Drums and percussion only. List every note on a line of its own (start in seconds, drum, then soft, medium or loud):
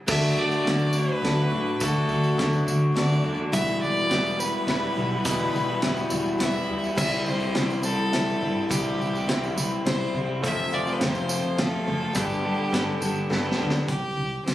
0.08 kick loud
0.08 crash loud
0.08 tambourine medium
0.51 tambourine soft
0.67 snare medium
0.67 closed hi-hat medium
0.79 tambourine soft
0.93 tambourine medium
1.24 snare medium
1.24 closed hi-hat medium
1.80 kick loud
1.80 closed hi-hat medium
1.80 tambourine loud
2.09 tambourine soft
2.23 tambourine soft
2.39 snare medium
2.39 closed hi-hat medium
2.53 tambourine soft
2.68 tambourine loud
2.96 snare medium
2.96 closed hi-hat medium
3.53 kick loud
3.53 closed hi-hat medium
3.53 tambourine loud
3.83 tambourine soft
3.97 tambourine soft
4.11 snare medium
4.11 closed hi-hat medium
4.26 tambourine soft
4.40 tambourine loud
4.68 snare medium
4.68 closed hi-hat medium
5.25 kick loud
5.25 closed hi-hat medium
5.25 tambourine medium
5.56 tambourine soft
5.82 snare medium
5.82 closed hi-hat medium
5.97 tambourine soft
6.10 tambourine loud
6.26 tambourine soft
6.40 snare medium
6.40 closed hi-hat medium
6.84 tambourine soft
6.98 kick loud
6.98 tambourine medium
6.98 crash loud
7.26 tambourine soft
7.40 tambourine soft
7.55 snare medium
7.55 closed hi-hat medium
7.70 tambourine soft
7.83 tambourine loud
8.13 snare medium
8.13 closed hi-hat medium
8.71 kick loud
8.71 closed hi-hat medium
8.71 tambourine loud
9.01 tambourine soft
9.15 tambourine soft
9.29 snare medium
9.29 closed hi-hat medium
9.44 tambourine soft
9.58 tambourine loud
9.86 snare medium
9.86 closed hi-hat medium
10.44 kick loud
10.44 closed hi-hat medium
10.44 tambourine medium
10.72 tambourine soft
10.87 tambourine soft
11.01 snare medium
11.01 closed hi-hat medium
11.15 tambourine soft
11.29 tambourine loud
11.58 snare medium
11.58 closed hi-hat medium
12.15 kick loud
12.15 closed hi-hat medium
12.15 tambourine loud
12.29 tambourine soft
12.74 snare medium
12.74 closed hi-hat medium
13.02 tambourine medium
13.16 tambourine soft
13.32 snare medium
13.51 snare medium
13.70 snare loud
13.88 kick loud
13.88 closed hi-hat medium
14.47 snare medium
14.47 closed hi-hat medium